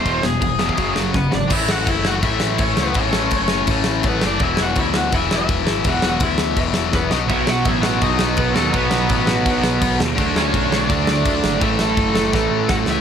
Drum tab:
CC |x---x---x-------|x---x---x---x---|x---x---x---x---|x---x---x---x---|
SD |--o---o---o-o-o-|--o---o---o---o-|--o---o---o---o-|--o---o---o---o-|
BD |o---o--oo---o---|o---o---o---o---|o---o---o---o---|o---o---o---o---|

CC |x---x---x-------|x---x---x---x---|x---x---x---x---|x---x---x---x---|
SD |--o---o---o-o-o-|--o---o---o---o-|--o---o---o---o-|--o---o---o---o-|
BD |o---o---o---o---|o---o---o---o---|o---o---o---o---|o---o---o---o---|

CC |x---x-----------|
SD |--o---o-o---o-o-|
BD |o---o---o---o---|